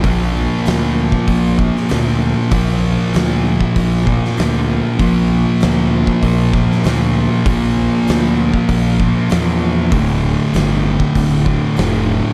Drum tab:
HH |o---o---o---o---|o---o---o---o---|o---o---o---o---|o---o---o---o---|
SD |----o------oo---|----o------oo---|----o------oo---|----o-------o---|
BD |o------oo-o-----|o------oo-o-----|o------oo-o-----|o------oo-o-----|

HH |o---o---o---o---|
SD |----o-------o---|
BD |o------oo-o-----|